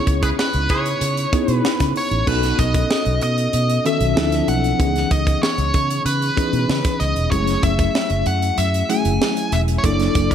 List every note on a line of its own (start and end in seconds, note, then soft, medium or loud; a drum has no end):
0.00 0.95 B3 medium
0.00 0.95 C#4 medium
0.00 0.95 D#4 medium
0.00 0.95 E4 medium
0.00 0.95 G#4 medium
0.00 0.25 C#5 medium
0.07 0.31 C#2 loud
0.07 kick medium
0.07 closed hi-hat medium
0.22 0.36 E4 medium
0.22 0.36 G#4 medium
0.22 0.36 B4 medium
0.22 0.28 B4 medium
0.22 kick loud
0.22 closed hi-hat medium
0.39 0.71 B4 medium
0.39 snare loud
0.54 0.66 C#2 loud
0.54 closed hi-hat medium
0.69 0.94 C#3 loud
0.69 0.90 E4 medium
0.69 0.90 G#4 loud
0.69 0.90 B4 loud
0.69 1.54 C#5 medium
0.69 kick loud
0.69 closed hi-hat medium
0.86 closed hi-hat medium
1.01 1.25 C#3 loud
1.01 closed hi-hat medium
1.17 closed hi-hat medium
1.32 2.22 B3 medium
1.32 2.22 C#4 medium
1.32 2.22 D#4 medium
1.32 2.23 E4 medium
1.32 2.23 G#4 medium
1.32 kick loud
1.32 closed hi-hat medium
1.48 1.60 B2 medium
1.48 closed hi-hat medium
1.54 1.92 B4 medium
1.65 snare loud
1.80 1.92 C#3 medium
1.80 kick medium
1.80 snare soft
1.80 closed hi-hat medium
1.96 2.26 C#5 medium
1.96 open hi-hat medium
2.11 2.23 A1 medium
2.11 closed hi-hat medium
2.27 2.51 B1 loud
2.27 3.46 B3 medium
2.27 3.47 C#4 medium
2.27 3.47 D#4 medium
2.27 3.47 F#4 medium
2.27 3.47 A4 medium
2.27 2.57 B4 medium
2.27 kick loud
2.27 crash medium
2.43 snare soft
2.43 closed hi-hat medium
2.59 2.83 B1 loud
2.59 3.22 D#5 loud
2.59 kick medium
2.59 closed hi-hat medium
2.74 kick medium
2.74 closed hi-hat medium
2.91 snare loud
3.05 3.18 B1 loud
3.05 closed hi-hat soft
3.21 3.46 B2 medium
3.21 3.86 D#5 medium
3.21 closed hi-hat medium
3.38 closed hi-hat medium
3.53 3.77 B2 loud
3.53 closed hi-hat medium
3.70 closed hi-hat medium
3.85 4.17 D#3 medium
3.85 4.16 B3 medium
3.85 4.17 C#4 medium
3.85 4.17 F#4 medium
3.85 4.16 A4 medium
3.85 4.51 E5 loud
3.85 closed hi-hat medium
4.01 4.13 B1 loud
4.01 closed hi-hat medium
4.16 4.40 D2 loud
4.16 4.76 F3 medium
4.16 4.76 C4 medium
4.16 4.76 D4 medium
4.16 4.76 E4 medium
4.16 4.77 A4 loud
4.16 snare loud
4.32 snare soft
4.32 closed hi-hat medium
4.48 4.72 B1 medium
4.48 5.13 F#5 loud
4.48 closed hi-hat medium
4.64 closed hi-hat medium
4.79 5.03 C#2 loud
4.79 5.99 E3 medium
4.79 5.99 B3 medium
4.79 5.99 C#4 medium
4.79 5.99 D#4 medium
4.79 5.99 G#4 medium
4.79 kick loud
4.79 closed hi-hat medium
4.96 snare soft
4.96 closed hi-hat medium
5.11 5.35 C#2 loud
5.11 5.43 D#5 loud
5.11 kick medium
5.11 closed hi-hat medium
5.27 kick loud
5.27 closed hi-hat medium
5.43 6.02 C#5 medium
5.43 snare loud
5.58 5.70 C#2 loud
5.58 closed hi-hat soft
5.74 5.98 C#3 loud
5.74 kick medium
5.74 closed hi-hat medium
5.91 closed hi-hat medium
6.05 6.29 C#3 loud
6.05 7.03 B4 medium
6.05 closed hi-hat medium
6.22 closed hi-hat soft
6.36 7.26 E3 medium
6.36 7.26 B3 medium
6.36 7.27 C#4 medium
6.36 7.27 D#4 medium
6.36 7.27 G#4 medium
6.36 kick loud
6.36 closed hi-hat medium
6.53 6.65 B2 medium
6.53 closed hi-hat medium
6.69 6.81 C#3 loud
6.69 snare loud
6.84 kick loud
6.84 snare soft
6.84 closed hi-hat medium
7.00 7.12 C#2 medium
7.00 7.31 D#5 medium
7.00 closed hi-hat medium
7.16 7.28 E1 medium
7.16 closed hi-hat soft
7.31 7.55 F#1 loud
7.31 8.51 F#3 medium
7.31 7.38 G#3 medium
7.31 8.51 C#4 medium
7.31 8.51 E4 medium
7.31 8.52 G#4 medium
7.31 7.63 C#5 loud
7.31 kick loud
7.31 closed hi-hat medium
7.38 8.54 A3 medium
7.47 snare soft
7.47 closed hi-hat medium
7.63 7.87 F#1 loud
7.63 8.28 E5 loud
7.63 kick loud
7.63 closed hi-hat medium
7.79 kick loud
7.79 closed hi-hat medium
7.95 snare loud
8.10 8.22 F#1 medium
8.10 closed hi-hat soft
8.26 8.50 F#2 loud
8.26 8.59 F#5 medium
8.26 closed hi-hat medium
8.42 closed hi-hat medium
8.58 8.82 F#2 loud
8.58 8.90 E5 loud
8.58 closed hi-hat medium
8.74 closed hi-hat medium
8.89 9.79 F#3 medium
8.89 9.79 A3 medium
8.89 9.79 C#4 medium
8.89 9.79 E4 medium
8.89 9.79 G#4 medium
8.89 9.54 G#5 loud
8.89 closed hi-hat medium
9.05 9.17 F#1 loud
9.05 closed hi-hat medium
9.22 snare loud
9.37 closed hi-hat medium
9.52 9.76 E1 medium
9.52 9.59 E5 medium
9.52 closed hi-hat medium
9.68 closed hi-hat medium
9.78 9.85 C#5 medium
9.83 10.08 F#1 loud
9.83 10.35 F#3 medium
9.83 10.35 A#3 medium
9.83 10.35 D4 medium
9.83 10.35 E4 medium
9.83 10.35 A4 medium
9.83 10.35 D5 medium
9.83 kick loud
9.83 closed hi-hat medium
10.00 snare soft
10.00 closed hi-hat medium
10.15 10.35 F#1 loud
10.15 kick medium
10.15 closed hi-hat medium
10.30 10.35 D4 medium
10.30 10.35 E4 medium
10.30 10.35 A#4 medium
10.30 kick loud
10.30 closed hi-hat medium